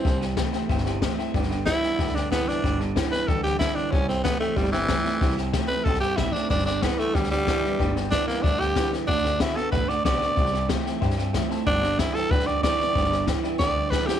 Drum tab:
HH |----p-------p---|----p-------p---|----p-------p---|----p-------p---|
SD |o-o-o-o-ooo-o-o-|ooo-o-o-ooo-o-o-|o-o-o-o-o-o-o-o-|o-o-o-o-ooo-o-o-|
BD |o---o---o---o---|o---o---o---o---|o---o---o---o---|o---o---o---o---|

HH |----p-------p---|----p-------p---|----p-------p---|----p-------p---|
SD |ooo-o-o-ooo-o-o-|ooo-o-o-ooo-o-o-|o-o-o-o-o-o-o-o-|ooo-o-o-o-o-o-o-|
BD |o---o---o---o---|o---o---o---o---|o---o---o---o---|o---o---o---o---|

HH |----p-------p---|----p-------p---|----p-------p---|
SD |ooo-o-o-ooo-o-o-|o-o-o-o-ooo-o-o-|ooo-o-o-o---o-o-|
BD |o---o---o---o---|o---o---o---o---|o---o---o---o---|